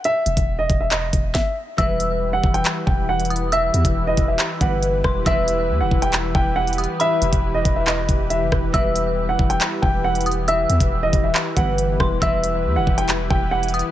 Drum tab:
HH |x---x-x-----x-------x-----------|x---x---------x-x---------xxxx--|x---x-x-----x-------x---x-------|x---x---------x-x---------xxxx--|
CP |----------------x---------------|----------------x---------------|----------------x---------------|----------------x---------------|
SD |------------------------o-------|--------------------------------|----------------------------r---|--------------------------------|
BD |------o-----o-------o---o-------|o-----------o-------o-----------|------o-----o-------o-------o---|o-----------o-------o-----------|

HH |x---x-x-----x-------x---x-------|x---x---------x-x---------xxxx--|x---x-x-----x-------x---x-------|x---x---------x-x---------xxxx--|
CP |----------------x---------------|----------------x---------------|----------------x---------------|----------------x---------------|
SD |----------------------------r---|--------------------------------|----------------------------r---|--------------------------------|
BD |------o-----o-------o-------o---|o-----------o-------o-----------|------o-----o-------o-------o---|o-----------o-------o-----------|